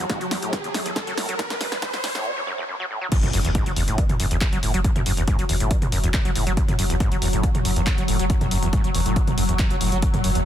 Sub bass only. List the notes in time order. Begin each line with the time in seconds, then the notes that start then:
3.23 F#1
3.33 F#1
3.45 F#1
3.66 F#1
3.77 F#1
3.88 F#1
4.09 F#1
4.20 F#1
4.31 F#1
4.53 F#1
4.63 F#1
4.74 F#1
4.96 F#1
5.06 F#1
5.17 F#1
5.39 F#1
5.49 F#1
5.61 F#1
5.82 F#1
5.92 F#1
6.04 F#1
6.25 F#1
6.36 F#1
6.47 F#1
6.68 F#1
6.79 F#1
6.90 F#1
7.12 F#1
7.22 F#1
7.33 F#1
7.55 F#1
7.65 F#1
7.76 F#1
7.98 F#1
8.08 F#1
8.19 F#1
8.41 F#1
8.51 F#1
8.63 F#1
8.84 F#1
8.94 F#1
9.06 F#1
9.27 F#1
9.38 F#1
9.49 F#1
9.71 F#1
9.81 F#1
9.92 F#1
10.14 F#1
10.24 F#1
10.35 F#1